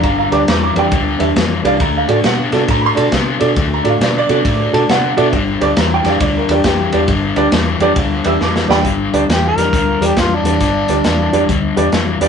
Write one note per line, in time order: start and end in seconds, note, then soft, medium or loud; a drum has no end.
0.03 0.26 G1 loud
0.03 0.45 G2 medium
0.03 0.46 D3 medium
0.03 0.17 F5 medium
0.03 0.18 A#5 medium
0.03 kick loud
0.03 ride medium
0.19 0.32 F5 medium
0.19 0.31 A#5 medium
0.32 0.45 D2 medium
0.32 0.40 D4 medium
0.32 0.40 G4 medium
0.32 0.40 B4 medium
0.32 0.41 D5 medium
0.32 0.46 A#5 medium
0.32 0.47 D6 medium
0.32 ride medium
0.48 0.71 E2 medium
0.48 0.74 G2 medium
0.48 0.74 E3 medium
0.48 0.62 A#5 medium
0.48 0.62 D6 medium
0.48 snare loud
0.48 ride medium
0.63 0.77 A#5 medium
0.63 0.78 D6 medium
0.75 0.89 F2 medium
0.75 0.91 G2 medium
0.75 0.92 E3 medium
0.75 0.84 D4 medium
0.75 0.84 G4 medium
0.75 0.84 B4 medium
0.75 0.85 D5 medium
0.75 1.21 G5 medium
0.75 ride medium
0.92 1.15 D2 medium
0.92 1.34 G2 medium
0.92 1.34 D3 medium
0.92 kick loud
0.92 ride medium
1.19 1.33 E2 medium
1.19 1.28 D4 medium
1.19 1.28 G4 medium
1.19 1.28 B4 medium
1.19 1.29 E5 medium
1.19 ride medium
1.36 1.59 F2 medium
1.36 1.62 G2 medium
1.36 1.62 E3 medium
1.36 snare loud
1.36 ride medium
1.64 1.77 C2 medium
1.64 1.79 G2 medium
1.64 1.79 E3 medium
1.64 1.72 D4 medium
1.64 1.72 G4 medium
1.64 1.73 B4 medium
1.64 1.73 D5 medium
1.64 1.81 F5 loud
1.64 ride medium
1.80 2.03 D2 medium
1.80 2.21 D3 medium
1.80 2.22 A3 medium
1.80 1.95 A#5 medium
1.80 kick loud
1.80 ride medium
1.97 2.25 F5 medium
2.08 2.21 A2 medium
2.08 2.16 D4 medium
2.08 2.17 F#4 medium
2.08 2.17 A4 medium
2.08 2.17 D5 medium
2.08 ride medium
2.24 2.47 B2 medium
2.24 2.50 D3 medium
2.24 2.51 B3 medium
2.24 2.53 F#5 loud
2.24 snare loud
2.24 ride medium
2.52 2.65 C3 medium
2.52 2.67 D3 medium
2.52 2.68 B3 medium
2.52 2.60 D4 medium
2.52 2.61 F#4 medium
2.52 2.61 A4 medium
2.52 2.61 D5 medium
2.52 snare soft
2.52 ride medium
2.68 2.91 A2 medium
2.68 3.10 D3 medium
2.68 3.10 A3 medium
2.68 2.84 A#5 loud
2.68 kick loud
2.68 ride loud
2.81 2.86 B5 medium
2.86 3.71 C6 medium
2.95 3.10 B2 medium
2.95 3.04 D4 medium
2.95 3.04 F#4 medium
2.95 3.05 A4 medium
2.95 3.05 D5 medium
2.95 ride medium
3.12 3.35 C3 medium
3.12 3.39 D3 medium
3.12 3.39 B3 loud
3.12 kick medium
3.12 snare medium
3.12 ride medium
3.39 3.54 B2 medium
3.39 3.55 D3 medium
3.39 3.56 B3 medium
3.39 3.48 D4 medium
3.39 3.49 F#4 medium
3.39 3.49 A4 medium
3.39 3.49 D5 medium
3.39 ride medium
3.56 3.79 D2 loud
3.56 3.98 D3 medium
3.56 3.98 A3 medium
3.56 kick loud
3.56 ride medium
3.74 3.87 A#5 medium
3.84 3.98 A2 medium
3.84 3.92 D4 medium
3.84 3.93 F#4 medium
3.84 3.93 A4 medium
3.84 3.93 D5 medium
3.84 ride medium
3.90 4.02 F5 medium
4.00 4.23 B2 medium
4.00 4.26 D3 medium
4.00 4.27 B3 medium
4.00 4.16 D5 medium
4.00 snare loud
4.00 ride medium
4.18 5.03 D5 loud
4.29 4.42 C3 medium
4.29 4.44 D3 medium
4.29 4.44 B3 medium
4.29 4.37 D4 medium
4.29 4.37 F#4 medium
4.29 4.37 A4 medium
4.29 4.37 D5 medium
4.29 ride medium
4.45 4.68 A2 loud
4.45 4.86 D3 medium
4.45 4.86 A3 loud
4.45 kick loud
4.45 ride medium
4.73 4.86 B2 medium
4.73 4.81 D4 medium
4.73 4.81 F#4 medium
4.73 4.81 A4 medium
4.73 4.82 D5 medium
4.73 4.88 A5 medium
4.73 ride medium
4.89 5.12 C3 medium
4.89 5.14 D3 medium
4.89 5.15 B3 medium
4.89 5.16 F#5 medium
4.89 snare loud
4.89 ride medium
5.17 5.31 B2 medium
5.17 5.32 D3 medium
5.17 5.32 B3 medium
5.17 5.25 D4 medium
5.17 5.25 F#4 medium
5.17 5.25 A4 medium
5.17 5.25 D5 medium
5.17 5.32 E5 medium
5.17 ride medium
5.33 5.55 G1 medium
5.33 5.74 G2 medium
5.33 5.74 D3 medium
5.33 kick loud
5.33 ride medium
5.61 5.74 D2 medium
5.61 5.69 D4 medium
5.61 5.69 G4 medium
5.61 5.69 B4 medium
5.61 5.69 D5 medium
5.61 5.77 D6 loud
5.61 ride medium
5.77 6.00 E2 medium
5.77 6.03 G2 medium
5.77 6.03 E3 medium
5.77 5.92 A#5 medium
5.77 snare loud
5.77 ride medium
5.94 6.07 G5 medium
6.04 6.18 F2 medium
6.04 6.18 G2 medium
6.04 6.19 E3 medium
6.04 6.13 D4 medium
6.04 6.13 G4 medium
6.04 6.13 B4 medium
6.04 6.13 D5 medium
6.04 snare soft
6.04 ride medium
6.09 6.22 F5 medium
6.20 6.43 D2 loud
6.20 6.61 G2 medium
6.20 6.62 D3 medium
6.20 6.36 D5 medium
6.20 kick loud
6.20 ride medium
6.37 6.51 A#4 medium
6.49 6.62 E2 loud
6.49 6.58 D4 medium
6.49 6.58 G4 medium
6.49 6.58 B4 medium
6.49 6.58 D5 medium
6.49 ride medium
6.53 6.64 G4 medium
6.64 6.87 F2 medium
6.64 6.90 G2 medium
6.64 6.90 E3 loud
6.64 7.08 G4 loud
6.64 kick medium
6.64 snare loud
6.64 ride medium
6.92 7.06 E2 medium
6.92 7.08 G2 medium
6.92 7.08 E3 medium
6.92 7.01 D4 medium
6.92 7.01 G4 medium
6.92 7.01 B4 medium
6.92 7.01 D5 medium
6.92 ride medium
7.08 7.31 G1 loud
7.08 7.50 G2 medium
7.08 7.50 D3 medium
7.08 kick loud
7.08 ride medium
7.36 7.49 D2 medium
7.36 7.45 D4 medium
7.36 7.45 G4 medium
7.36 7.45 B4 medium
7.36 7.45 D5 loud
7.36 ride medium
7.52 7.75 E2 medium
7.52 7.78 G2 medium
7.52 7.78 E3 loud
7.52 snare loud
7.52 ride medium
7.80 7.93 F2 medium
7.80 7.95 G2 medium
7.80 7.96 E3 medium
7.80 7.89 D4 medium
7.80 7.89 G4 medium
7.80 7.89 B4 medium
7.80 7.90 D5 loud
7.80 ride medium
7.96 8.19 D2 medium
7.96 8.38 G2 medium
7.96 8.38 D3 medium
7.96 kick loud
7.96 ride medium
8.24 8.38 E2 loud
8.24 8.33 D4 medium
8.24 8.33 G4 medium
8.24 8.33 B4 medium
8.24 8.33 E5 medium
8.24 8.41 E6 loud
8.24 ride medium
8.41 8.63 F2 medium
8.41 8.66 G2 medium
8.41 8.66 E3 medium
8.41 8.69 D6 medium
8.41 snare medium
8.56 snare medium
8.68 8.82 E2 medium
8.68 8.84 G2 medium
8.68 8.84 E3 medium
8.68 8.77 D4 medium
8.68 8.77 G4 medium
8.68 8.77 B4 medium
8.68 8.77 D5 medium
8.68 8.85 G5 loud
8.68 8.85 B5 loud
8.68 snare loud
8.85 9.07 G1 medium
8.85 9.26 G2 medium
8.85 9.26 D3 medium
8.85 kick medium
8.85 closed hi-hat medium
9.13 9.26 D2 medium
9.13 9.21 D4 medium
9.13 9.21 G4 medium
9.13 9.21 B4 medium
9.13 9.21 D5 loud
9.13 closed hi-hat medium
9.29 9.51 E2 medium
9.29 9.54 G2 medium
9.29 9.55 E3 medium
9.29 9.45 G4 medium
9.29 snare loud
9.29 closed hi-hat medium
9.48 10.07 A#4 medium
9.57 9.69 F2 medium
9.57 9.72 G2 medium
9.57 9.72 E3 medium
9.57 9.65 D4 medium
9.57 9.65 G4 medium
9.57 9.66 B4 medium
9.57 9.66 D5 medium
9.57 snare soft
9.57 closed hi-hat medium
9.73 9.95 D2 medium
9.73 10.14 G2 medium
9.73 10.14 D3 medium
9.73 kick loud
9.73 closed hi-hat medium
10.00 10.13 E2 medium
10.00 10.09 D4 medium
10.00 10.09 G4 medium
10.00 10.09 B4 medium
10.00 10.09 D5 medium
10.00 closed hi-hat medium
10.05 10.21 G4 medium
10.17 10.39 F2 medium
10.17 10.43 G2 medium
10.17 10.43 E3 medium
10.17 10.36 F4 medium
10.17 kick medium
10.17 snare loud
10.17 closed hi-hat medium
10.35 11.61 D4 medium
10.43 10.57 E2 medium
10.43 10.59 G2 medium
10.43 10.60 E3 medium
10.43 10.53 D4 medium
10.43 10.53 G4 medium
10.43 10.53 B4 medium
10.43 10.53 D5 medium
10.43 closed hi-hat medium
10.60 10.83 G1 medium
10.60 11.02 G2 medium
10.60 11.02 D3 medium
10.60 kick medium
10.60 closed hi-hat medium
10.88 11.02 D2 medium
10.88 10.97 D4 medium
10.88 10.97 G4 medium
10.88 10.97 B4 medium
10.88 10.97 D5 medium
10.88 closed hi-hat soft
11.04 11.28 E2 medium
11.04 11.30 G2 medium
11.04 11.31 E3 medium
11.04 snare loud
11.04 closed hi-hat medium
11.32 11.46 F2 medium
11.32 11.48 G2 medium
11.32 11.48 E3 medium
11.32 11.41 D4 medium
11.32 11.41 G4 medium
11.32 11.41 B4 medium
11.32 11.41 D5 medium
11.32 closed hi-hat medium
11.49 11.71 D2 medium
11.49 11.90 G2 medium
11.49 11.90 D3 medium
11.49 kick loud
11.49 closed hi-hat medium
11.76 11.90 E2 medium
11.76 11.85 D4 medium
11.76 11.85 G4 medium
11.76 11.85 B4 medium
11.76 11.85 D5 medium
11.76 closed hi-hat medium
11.92 12.15 F2 medium
11.92 12.18 G2 medium
11.92 12.19 E3 medium
11.92 snare loud
11.92 closed hi-hat medium
12.20 12.28 E2 medium
12.20 12.28 G2 medium
12.20 12.28 E3 medium
12.20 12.28 D4 medium
12.20 12.28 G4 medium
12.20 12.28 B4 medium
12.20 12.28 D5 loud
12.20 closed hi-hat medium